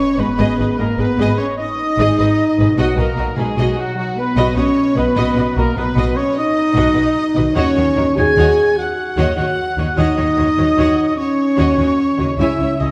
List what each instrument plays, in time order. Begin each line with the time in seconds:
Already playing: harp G#2, french horn section C#4, violin section C#5, cor anglais C#5, flute C#6
0.17 double bass section G#1, cello section G#2, french horn section B3, viola section G#4 D#5, violin section B4, cor anglais B4, flute B5
0.38 double bass section G#1, cello section G#2, viola section G#4 D#5, violin section D#5
0.59 double bass section G#1, cello section G#2, viola section G#4 D#5, violin section B4
0.77 double bass section G#1, cello section G#2, french horn section A#3, viola section G#4 D#5, violin section G#4 A#4, cor anglais A#4, flute A#5
0.96 double bass section G#1, cello section G#2, french horn section B3, viola section G#4 D#5, violin section B4, cor anglais B4, flute B5
1.18 double bass section G#1, cello section G#2, viola section G#4 D#5, violin section D#5
1.38 french horn section C#4, violin section C#5, cor anglais C#5, flute C#6
1.58 french horn section D#4, cor anglais D#5, violin section D#5, flute D#6
1.98 double bass section G#1, cello section G#2, viola section G#4 D#5, violin section D#5
2.19 double bass section G#1, cello section G#2, viola section G#4 D#5, violin section B4
2.58 double bass section G#1, cello section G#2, harp B2, viola section G#4 D#5, violin section B4
2.65 harp D#4
2.69 harp F#4
2.73 french horn section F#3, harp D#5
2.78 double bass section B1, cello section B2, cor anglais F#4, violin section F#4 D#5, viola section F#4 D#5, flute F#5
2.97 double bass section B1, cello section B2, french horn section A#3, viola section F#4 D#5, violin section A#4 B4, cor anglais A#4, flute A#5
3.17 double bass section B1, cello section B2, violin section F#4, viola section F#4 D#5
3.37 double bass section B1, cello section B2, french horn section G#3, viola section F#4 D#5, violin section G#4 B4, cor anglais G#4, flute G#5
3.57 double bass section B1, cello section B2, viola section F#4 D#5, violin section D#5
3.76 french horn section F#3, violin section F#4, cor anglais F#4, flute F#5
3.95 french horn section F#3, violin section F#4, flute F#5
4.00 cor anglais F#4
4.18 french horn section B3, violin section B4, cor anglais B4, flute B5
4.37 double bass section B1, cello section B2, viola section F#4 D#5, violin section D#5
4.56 double bass section B1, cello section B2, french horn section C#4, viola section F#4 D#5, violin section B4 C#5, cor anglais C#5, flute C#6
4.96 double bass section B1, cello section B2, french horn section B3, viola section F#4 D#5, violin section B4, cor anglais B4, flute B5
5.16 double bass section B1, cello section B2, viola section F#4 D#5, violin section D#5
5.35 double bass section B1, cello section B2, viola section F#4 D#5, violin section B4
5.56 double bass section B1, cello section B2, french horn section A#3, violin section F#4 A#4, viola section F#4 D#5, cor anglais A#4, flute A#5
5.76 double bass section B1, cello section B2, french horn section B3, viola section F#4 D#5, violin section B4, cor anglais B4, flute B5
5.96 double bass section B1, cello section B2, viola section F#4 D#5, violin section D#5
6.16 french horn section C#4, cor anglais C#5, violin section C#5, flute C#6
6.36 french horn section D#4, violin section D#5, cor anglais D#5, flute D#6
6.75 double bass section B1, cello section B2, viola section F#4 D#5, violin section D#5
6.95 double bass section B1, cello section B2, viola section F#4 D#5, violin section B4
7.36 double bass section B1, cello section B2, harp D#3, viola section F#4 D#5, violin section B4
7.43 harp D#4
7.47 harp F#4 C#5
7.55 double bass section D#2, cello section D#3, french horn section C#4, viola section F#4 C#5, cor anglais C#5, violin section C#5 D#5 F#5, flute C#6
7.75 double bass section D#2, cello section D#3, viola section F#4 C#5, violin section C#5 D#5
7.96 double bass section D#2, cello section D#3, viola section F#4 C#5, violin section A#4 C#5
8.16 double bass section D#2, cello section D#3, viola section F#4 C#5, french horn section G#4, violin section C#5 D#5 G#5, cor anglais G#5, flute G#6
8.37 double bass section D#2, cello section D#3, viola section F#4 C#5, violin section D#5 F#5
8.77 french horn section F#4, cor anglais F#5, violin section F#5, flute F#6
9.17 double bass section D#2, cello section D#3, viola section F#4 C#5, violin section D#5 F#5
9.37 double bass section D#2, cello section D#3, french horn section F#4, viola section F#4 C#5, violin section C#5 D#5 F#5, cor anglais F#5, flute F#6
9.77 double bass section D#2, cello section D#3, viola section F#4 C#5, violin section C#5 D#5
9.97 double bass section D#2, cello section D#3, french horn section D#4, viola section F#4 C#5, violin section D#5 F#5, cor anglais D#5, flute D#6
10.17 double bass section D#2, cello section D#3, viola section F#4 C#5, violin section C#5 D#5
10.37 double bass section D#2, cello section D#3, viola section F#4 C#5, violin section A#4 C#5
10.57 double bass section D#2, cello section D#3, viola section F#4 C#5, violin section C#5 D#5
10.77 double bass section D#2, cello section D#3, viola section F#4 C#5, violin section D#5 F#5
11.17 french horn section C#4, cor anglais C#5, violin section C#5, flute C#6
11.57 double bass section D#2, cello section D#3, viola section F#4 C#5, violin section D#5 F#5
11.78 double bass section D#2, cello section D#3, viola section F#4 C#5, violin section C#5 D#5
12.17 double bass section D#2, cello section D#3, viola section F#4 C#5, violin section C#5 D#5
12.21 harp C#3
12.26 harp E4
12.31 harp G#4
12.35 double bass section C#2, french horn section E4, harp C#5
12.39 cello section C#3, viola section E4 C#5, cor anglais E5, violin section E5 G#5, flute E6
12.59 double bass section C#2, cello section C#3, viola section E4 C#5, violin section C#5 E5
12.78 double bass section C#2, cello section C#3, french horn section D#4, viola section E4 C#5, violin section D#5, flute D#6
12.82 violin section G#4 C#5, cor anglais D#5